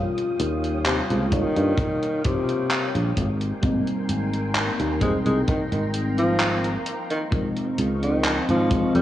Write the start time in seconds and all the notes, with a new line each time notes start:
Already playing: G3 A#3 C#4 F4 C#5 F5 G5 D#6
0.18 closed hi-hat
0.40 D#2, closed hi-hat
0.64 closed hi-hat
0.86 C3, clap, closed hi-hat
1.10 C#2 C3, closed hi-hat
1.30 D#3 G3 A#3 F4 C#5, kick, closed hi-hat
1.56 G2, closed hi-hat
1.78 kick, closed hi-hat
2.03 closed hi-hat
2.24 C3, kick, closed hi-hat
2.49 closed hi-hat
2.71 clap, closed hi-hat
2.95 A#1, closed hi-hat
3.16 G#1 A#4 G5 G#5 C6, kick, closed hi-hat
3.41 closed hi-hat
3.61 G#1 G3 A#3 C4 D#4, kick, closed hi-hat
3.87 closed hi-hat
4.09 G#1, closed hi-hat
4.33 closed hi-hat
4.55 clap, closed hi-hat
4.80 D#2, closed hi-hat
5.00 G3 G#3 A#3 C4 D#4 A#5, kick, closed hi-hat
5.26 C2 G#3, closed hi-hat
5.47 D#3, kick, closed hi-hat
5.72 G#1 D#3, closed hi-hat
5.94 closed hi-hat
6.18 F3, closed hi-hat
6.40 clap, closed hi-hat
6.64 closed hi-hat
6.86 closed hi-hat
7.10 D#3, closed hi-hat
7.31 D#3 F3 G#3 C4 D#4 D#5 F5 C#6, kick, closed hi-hat
7.57 closed hi-hat
7.78 C#2, closed hi-hat
8.03 D#3, closed hi-hat
8.24 clap, closed hi-hat
8.49 G#1 F3, closed hi-hat
8.69 F3 G#3 C4 D#4, kick, closed hi-hat
8.95 F2 G#3, closed hi-hat